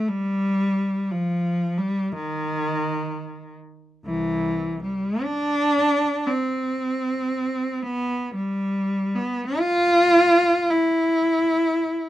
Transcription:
0, 0, Header, 1, 2, 480
1, 0, Start_track
1, 0, Tempo, 1030928
1, 40, Time_signature, 4, 2, 24, 8
1, 518, Tempo, 978793
1, 1958, Tempo, 1171875
1, 2438, Tempo, 1041667
1, 3878, Tempo, 1244813
1, 4358, Tempo, 1098901
1, 5451, End_track
2, 0, Start_track
2, 0, Title_t, "Cello"
2, 0, Program_c, 0, 42
2, 39, Note_on_c, 0, 55, 105
2, 518, Note_off_c, 0, 55, 0
2, 519, Note_on_c, 0, 53, 98
2, 844, Note_on_c, 0, 55, 98
2, 845, Note_off_c, 0, 53, 0
2, 1003, Note_off_c, 0, 55, 0
2, 1012, Note_on_c, 0, 51, 108
2, 1714, Note_off_c, 0, 51, 0
2, 1961, Note_on_c, 0, 36, 75
2, 1963, Note_on_c, 0, 52, 97
2, 2263, Note_off_c, 0, 36, 0
2, 2264, Note_off_c, 0, 52, 0
2, 2277, Note_on_c, 0, 55, 97
2, 2434, Note_off_c, 0, 55, 0
2, 2438, Note_on_c, 0, 62, 127
2, 2916, Note_off_c, 0, 62, 0
2, 2921, Note_on_c, 0, 60, 99
2, 3639, Note_on_c, 0, 59, 98
2, 3641, Note_off_c, 0, 60, 0
2, 3877, Note_on_c, 0, 55, 103
2, 3878, Note_off_c, 0, 59, 0
2, 4187, Note_off_c, 0, 55, 0
2, 4191, Note_on_c, 0, 59, 100
2, 4356, Note_off_c, 0, 59, 0
2, 4358, Note_on_c, 0, 65, 127
2, 4840, Note_off_c, 0, 65, 0
2, 4842, Note_on_c, 0, 64, 104
2, 5451, Note_off_c, 0, 64, 0
2, 5451, End_track
0, 0, End_of_file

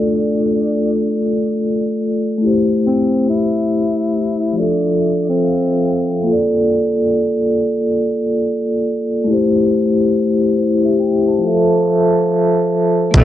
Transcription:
0, 0, Header, 1, 5, 480
1, 0, Start_track
1, 0, Key_signature, -1, "major"
1, 0, Tempo, 857143
1, 1602, Time_signature, 4, 2, 24, 8
1, 7414, End_track
2, 0, Start_track
2, 0, Title_t, "Vibraphone"
2, 0, Program_c, 0, 11
2, 0, Control_c, 0, 64, 127
2, 0, Note_on_c, 0, 57, 73
2, 0, Note_on_c, 0, 65, 64
2, 0, Note_on_c, 0, 69, 62
2, 0, Note_on_c, 0, 74, 70
2, 1326, Note_off_c, 0, 57, 0
2, 1333, Note_on_c, 0, 57, 65
2, 1336, Note_off_c, 0, 65, 0
2, 1343, Note_off_c, 0, 69, 0
2, 1349, Note_on_c, 0, 64, 56
2, 1352, Note_off_c, 0, 74, 0
2, 1367, Note_on_c, 0, 67, 56
2, 1369, Control_c, 0, 64, 0
2, 1383, Note_on_c, 0, 72, 74
2, 1479, Control_c, 0, 64, 127
2, 2525, Note_off_c, 0, 57, 0
2, 2533, Note_off_c, 0, 64, 0
2, 2536, Note_on_c, 0, 53, 66
2, 2542, Note_off_c, 0, 67, 0
2, 2550, Note_off_c, 0, 72, 0
2, 2553, Note_on_c, 0, 65, 57
2, 2568, Control_c, 0, 64, 0
2, 2570, Note_on_c, 0, 69, 62
2, 2586, Note_on_c, 0, 76, 71
2, 2660, Control_c, 0, 64, 127
2, 2796, Note_off_c, 0, 76, 0
2, 2803, Note_on_c, 0, 76, 64
2, 3026, Note_off_c, 0, 76, 0
2, 3040, Note_on_c, 0, 77, 61
2, 3264, Note_off_c, 0, 77, 0
2, 3279, Note_on_c, 0, 79, 65
2, 3489, Note_off_c, 0, 53, 0
2, 3490, Note_on_c, 0, 58, 68
2, 3498, Note_off_c, 0, 65, 0
2, 3503, Note_off_c, 0, 79, 0
2, 3506, Note_on_c, 0, 65, 65
2, 3507, Note_off_c, 0, 69, 0
2, 3524, Note_on_c, 0, 69, 68
2, 3529, Control_c, 0, 64, 0
2, 3540, Note_on_c, 0, 74, 82
2, 3632, Control_c, 0, 64, 127
2, 5163, Note_off_c, 0, 58, 0
2, 5172, Note_off_c, 0, 65, 0
2, 5174, Note_on_c, 0, 57, 67
2, 5180, Note_off_c, 0, 69, 0
2, 5188, Note_off_c, 0, 74, 0
2, 5192, Note_on_c, 0, 64, 60
2, 5208, Note_on_c, 0, 67, 58
2, 5209, Control_c, 0, 64, 0
2, 5224, Note_on_c, 0, 72, 76
2, 5315, Control_c, 0, 64, 127
2, 5902, Note_off_c, 0, 64, 0
2, 5911, Note_off_c, 0, 67, 0
2, 5917, Note_off_c, 0, 72, 0
2, 5924, Note_on_c, 0, 72, 57
2, 5928, Note_on_c, 0, 64, 49
2, 6071, Note_off_c, 0, 72, 0
2, 6073, Note_off_c, 0, 64, 0
2, 6075, Note_on_c, 0, 76, 60
2, 6079, Note_on_c, 0, 67, 56
2, 6156, Note_off_c, 0, 76, 0
2, 6158, Note_off_c, 0, 67, 0
2, 6158, Note_on_c, 0, 79, 62
2, 6308, Note_off_c, 0, 79, 0
2, 6311, Note_on_c, 0, 81, 55
2, 6315, Note_on_c, 0, 72, 49
2, 6366, Note_off_c, 0, 57, 0
2, 6377, Note_on_c, 0, 53, 70
2, 6393, Note_on_c, 0, 65, 61
2, 6409, Control_c, 0, 64, 0
2, 6409, Note_on_c, 0, 69, 55
2, 6425, Note_on_c, 0, 76, 67
2, 6519, Control_c, 0, 64, 127
2, 6542, Note_off_c, 0, 81, 0
2, 6544, Note_off_c, 0, 72, 0
2, 7330, Note_off_c, 0, 53, 0
2, 7338, Note_off_c, 0, 65, 0
2, 7341, Note_on_c, 0, 57, 58
2, 7346, Note_off_c, 0, 69, 0
2, 7354, Note_off_c, 0, 76, 0
2, 7358, Note_on_c, 0, 65, 54
2, 7370, Control_c, 0, 64, 0
2, 7375, Note_on_c, 0, 69, 51
2, 7391, Note_on_c, 0, 74, 72
2, 7414, Note_off_c, 0, 57, 0
2, 7414, Note_off_c, 0, 65, 0
2, 7414, Note_off_c, 0, 69, 0
2, 7414, Note_off_c, 0, 74, 0
2, 7414, End_track
3, 0, Start_track
3, 0, Title_t, "Tenor saxophone"
3, 0, Program_c, 1, 66
3, 0, Note_on_c, 1, 62, 83
3, 778, Note_off_c, 1, 62, 0
3, 1605, Note_on_c, 1, 60, 95
3, 1821, Note_off_c, 1, 60, 0
3, 1845, Note_on_c, 1, 64, 77
3, 2565, Note_on_c, 1, 62, 74
3, 2573, Note_off_c, 1, 64, 0
3, 2963, Note_on_c, 1, 60, 70
3, 2971, Note_off_c, 1, 62, 0
3, 3502, Note_off_c, 1, 60, 0
3, 7368, Note_on_c, 1, 57, 100
3, 7414, Note_off_c, 1, 57, 0
3, 7414, End_track
4, 0, Start_track
4, 0, Title_t, "Double bass"
4, 0, Program_c, 2, 43
4, 7364, Note_on_c, 2, 34, 95
4, 7414, Note_off_c, 2, 34, 0
4, 7414, End_track
5, 0, Start_track
5, 0, Title_t, "Drums"
5, 7358, Note_on_c, 9, 42, 76
5, 7360, Note_on_c, 9, 36, 97
5, 7414, Note_off_c, 9, 36, 0
5, 7414, Note_off_c, 9, 42, 0
5, 7414, End_track
0, 0, End_of_file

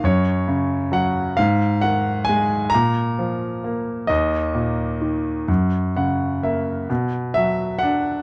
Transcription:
0, 0, Header, 1, 2, 480
1, 0, Start_track
1, 0, Tempo, 904977
1, 730, Time_signature, 6, 3, 24, 8
1, 2173, Tempo, 930233
1, 4302, End_track
2, 0, Start_track
2, 0, Title_t, "Grand piano"
2, 0, Program_c, 0, 0
2, 0, Control_c, 0, 64, 127
2, 19, Control_c, 0, 64, 0
2, 19, Note_on_c, 0, 42, 55
2, 26, Note_on_c, 0, 73, 74
2, 112, Control_c, 0, 64, 127
2, 254, Note_on_c, 0, 49, 47
2, 476, Note_off_c, 0, 73, 0
2, 486, Note_on_c, 0, 54, 45
2, 493, Note_on_c, 0, 78, 71
2, 712, Note_off_c, 0, 42, 0
2, 715, Note_off_c, 0, 78, 0
2, 717, Note_off_c, 0, 49, 0
2, 721, Note_off_c, 0, 54, 0
2, 725, Note_on_c, 0, 77, 79
2, 736, Note_on_c, 0, 44, 61
2, 738, Control_c, 0, 64, 0
2, 841, Control_c, 0, 64, 127
2, 962, Note_on_c, 0, 78, 79
2, 974, Note_on_c, 0, 51, 48
2, 975, Note_off_c, 0, 77, 0
2, 1191, Note_on_c, 0, 80, 80
2, 1214, Note_off_c, 0, 78, 0
2, 1214, Note_on_c, 0, 56, 50
2, 1424, Note_off_c, 0, 80, 0
2, 1430, Note_on_c, 0, 82, 88
2, 1432, Note_off_c, 0, 44, 0
2, 1438, Note_off_c, 0, 51, 0
2, 1446, Note_off_c, 0, 56, 0
2, 1454, Note_on_c, 0, 46, 55
2, 1458, Control_c, 0, 64, 0
2, 1539, Control_c, 0, 64, 127
2, 1690, Note_on_c, 0, 53, 45
2, 1932, Note_on_c, 0, 58, 42
2, 2142, Note_off_c, 0, 82, 0
2, 2154, Note_off_c, 0, 46, 0
2, 2158, Note_off_c, 0, 53, 0
2, 2161, Note_on_c, 0, 75, 69
2, 2166, Note_off_c, 0, 58, 0
2, 2172, Note_on_c, 0, 39, 54
2, 2181, Control_c, 0, 64, 0
2, 2284, Control_c, 0, 64, 127
2, 2404, Note_on_c, 0, 46, 42
2, 2646, Note_on_c, 0, 51, 42
2, 2869, Note_off_c, 0, 39, 0
2, 2874, Note_off_c, 0, 46, 0
2, 2882, Note_off_c, 0, 51, 0
2, 2887, Note_on_c, 0, 42, 49
2, 2898, Control_c, 0, 64, 0
2, 2989, Control_c, 0, 64, 127
2, 3107, Note_off_c, 0, 75, 0
2, 3137, Note_on_c, 0, 49, 42
2, 3137, Note_on_c, 0, 78, 51
2, 3361, Note_off_c, 0, 78, 0
2, 3379, Note_on_c, 0, 58, 37
2, 3379, Note_on_c, 0, 76, 46
2, 3596, Note_off_c, 0, 42, 0
2, 3603, Note_off_c, 0, 76, 0
2, 3606, Note_off_c, 0, 49, 0
2, 3613, Note_off_c, 0, 58, 0
2, 3618, Note_on_c, 0, 47, 49
2, 3625, Control_c, 0, 64, 0
2, 3704, Control_c, 0, 64, 127
2, 3847, Note_on_c, 0, 76, 73
2, 3860, Note_on_c, 0, 54, 39
2, 4075, Note_off_c, 0, 76, 0
2, 4076, Note_on_c, 0, 78, 75
2, 4098, Note_on_c, 0, 62, 44
2, 4302, Note_off_c, 0, 47, 0
2, 4302, Note_off_c, 0, 54, 0
2, 4302, Note_off_c, 0, 62, 0
2, 4302, Note_off_c, 0, 78, 0
2, 4302, End_track
0, 0, End_of_file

